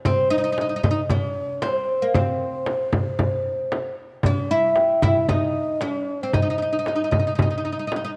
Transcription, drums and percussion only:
0.05 frame drum, darbuka dum
0.19 darbuka ka
0.58 darbuka tek, frame drum
0.84 darbuka dum, frame drum
1.09 frame drum, darbuka dum
1.24 darbuka ka
1.37 darbuka ka
1.62 darbuka tek, frame drum
2.14 frame drum, darbuka dum
2.29 darbuka ka
2.66 darbuka tek, frame drum
2.93 frame drum, darbuka dum
3.19 frame drum, darbuka dum
3.33 darbuka ka
3.46 darbuka ka
3.72 darbuka tek, frame drum
4.23 frame drum, darbuka dum
4.38 darbuka ka
4.76 darbuka tek, frame drum
5.02 frame drum, darbuka dum
5.29 frame drum, darbuka dum
5.43 darbuka ka
5.57 darbuka ka
5.81 darbuka tek, frame drum
6.33 frame drum, darbuka dum
6.49 darbuka ka
6.86 darbuka tek, frame drum
7.12 frame drum, darbuka dum
7.39 frame drum, darbuka dum
7.52 darbuka ka
7.66 darbuka ka
7.92 darbuka tek, frame drum

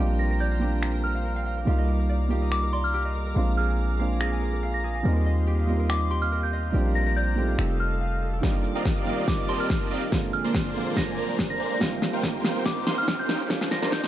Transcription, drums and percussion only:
0.83 finger snap
2.52 finger snap
4.21 finger snap
5.90 finger snap
7.59 finger snap
8.43 kick, snare, closed hi-hat
8.64 closed hi-hat
8.76 closed hi-hat
8.85 kick, snare, closed hi-hat
9.07 closed hi-hat
9.28 kick, snare, closed hi-hat
9.49 closed hi-hat
9.60 closed hi-hat
9.70 kick, snare, closed hi-hat
9.91 closed hi-hat
10.12 kick, snare, closed hi-hat
10.33 closed hi-hat
10.45 closed hi-hat
10.54 kick, snare, closed hi-hat
10.76 closed hi-hat
10.97 kick, snare, closed hi-hat
11.18 closed hi-hat
11.29 closed hi-hat
11.39 kick, snare, closed hi-hat
11.60 closed hi-hat
11.81 kick, snare, closed hi-hat
12.02 snare, closed hi-hat
12.13 closed hi-hat
12.23 kick, snare, closed hi-hat
12.45 snare, closed hi-hat
12.66 kick, snare, closed hi-hat
12.87 snare, closed hi-hat
12.98 closed hi-hat
13.08 kick, snare, closed hi-hat
13.29 snare, closed hi-hat
13.50 kick, snare, closed hi-hat
13.61 snare
13.71 snare, closed hi-hat
13.82 snare, closed hi-hat
13.92 kick, snare, closed hi-hat
14.04 snare

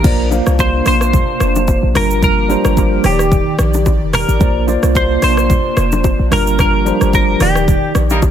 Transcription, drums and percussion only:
0.04 kick, crash, low conga, shaker
0.32 low bongo, shaker
0.47 cross-stick, shaker
0.59 kick, high bongo, shaker
0.86 cross-stick, open hi-hat, shaker
1.01 cross-stick, shaker
1.13 kick, low conga, shaker
1.40 cross-stick, shaker
1.56 low bongo, shaker
1.68 kick, high bongo, shaker
1.95 cross-stick, open hi-hat, low conga, shaker
2.11 shaker
2.22 kick, low conga, shaker
2.50 low bongo, shaker
2.65 cross-stick, shaker
2.77 kick, high bongo, shaker
3.04 cross-stick, open hi-hat, shaker
3.19 cross-stick, shaker
3.32 kick, low conga, shaker
3.59 cross-stick, shaker
3.74 low bongo, shaker
3.86 kick, high bongo, shaker
4.13 cross-stick, open hi-hat, low conga, shaker
4.29 shaker
4.41 kick, low conga, shaker
4.68 low bongo, shaker
4.83 cross-stick, shaker
4.95 kick, high bongo, shaker
5.22 cross-stick, open hi-hat, shaker
5.37 cross-stick, shaker
5.50 kick, low conga, shaker
5.77 cross-stick, shaker
5.92 low bongo, shaker
6.04 kick, high bongo, shaker
6.32 cross-stick, open hi-hat, low conga, shaker
6.47 shaker
6.59 kick, cross-stick, low conga, shaker
6.86 low bongo, shaker
7.01 cross-stick, shaker
7.13 kick, high bongo, shaker
7.40 cross-stick, open hi-hat, shaker
7.55 cross-stick, shaker
7.68 kick, low conga, shaker
7.95 cross-stick, shaker
8.10 low bongo, shaker
8.22 kick, high bongo, shaker

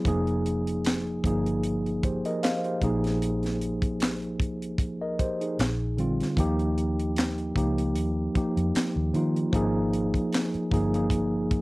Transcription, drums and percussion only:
0.05 kick, closed hi-hat
0.27 closed hi-hat
0.46 closed hi-hat
0.67 closed hi-hat
0.85 snare, clap, closed hi-hat
1.24 kick, closed hi-hat
1.46 closed hi-hat
1.63 closed hi-hat
1.86 closed hi-hat
2.03 kick, closed hi-hat
2.25 closed hi-hat
2.43 snare, clap, closed hi-hat
2.64 closed hi-hat
2.82 kick, closed hi-hat
3.04 snare, closed hi-hat
3.22 closed hi-hat
3.43 snare, closed hi-hat
3.62 closed hi-hat
3.82 kick, closed hi-hat
4.00 snare, clap, closed hi-hat
4.22 closed hi-hat
4.40 kick, closed hi-hat
4.62 closed hi-hat
4.78 kick, closed hi-hat
5.19 kick, closed hi-hat
5.41 closed hi-hat
5.59 snare, clap, closed hi-hat
5.98 closed hi-hat
6.20 snare, closed hi-hat
6.37 kick, closed hi-hat
6.59 closed hi-hat
6.78 closed hi-hat
7.00 closed hi-hat
7.16 snare, clap, closed hi-hat
7.38 closed hi-hat
7.56 kick, closed hi-hat
7.78 closed hi-hat
7.96 closed hi-hat
8.35 kick, closed hi-hat
8.57 closed hi-hat
8.75 snare, clap, closed hi-hat
9.14 closed hi-hat
9.36 closed hi-hat
9.53 kick, closed hi-hat
9.93 closed hi-hat
10.14 kick, closed hi-hat
10.33 snare, clap, closed hi-hat
10.54 closed hi-hat
10.72 kick, closed hi-hat
10.94 closed hi-hat
11.10 kick, closed hi-hat
11.51 kick, closed hi-hat

